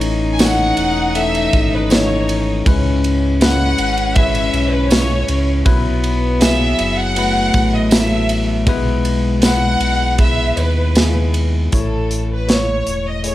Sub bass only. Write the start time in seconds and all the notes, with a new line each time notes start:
Already playing: A1
0.77 E1
1.53 G#1
2.66 C#2
3.79 G#1
4.53 B1
5.29 C#2
5.66 B1
6.79 F#1
7.54 A1
8.67 B1
9.80 B1
10.57 D#2
11.73 A1
12.87 E1